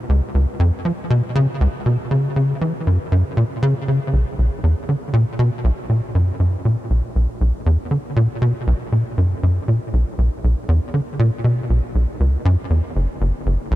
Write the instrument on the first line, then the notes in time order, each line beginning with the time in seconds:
analog synth bass
0.09 C#2
0.34 C#2
0.60 F2
0.85 F3
1.10 B2
1.35 C#3
1.61 C#2
1.86 B2
2.11 C#3
2.36 C#3
2.61 E3
2.87 F#2
3.12 F#2
3.37 A#2
3.62 C#3
3.88 C#3
4.13 B1
4.38 B1
4.63 E2
4.89 D3
5.13 A#2
5.39 B2
5.64 B1
5.89 A#2
6.15 F#2
6.40 F#2
6.65 A#2
6.90 B1
7.16 B1
7.41 B1
7.66 E2
7.91 D3
8.16 A#2
8.42 B2
8.67 B1
8.92 A#2
9.18 F#2
9.43 F#2
9.68 A#2
9.93 B1
10.18 B1
10.44 B1
10.68 E2
10.94 D3
11.19 A#2
11.44 B2
11.70 B1
11.95 B1
12.20 C#2
12.45 F#2
12.70 E2
12.96 F#1
13.21 F#1
13.46 F#1
13.71 A#1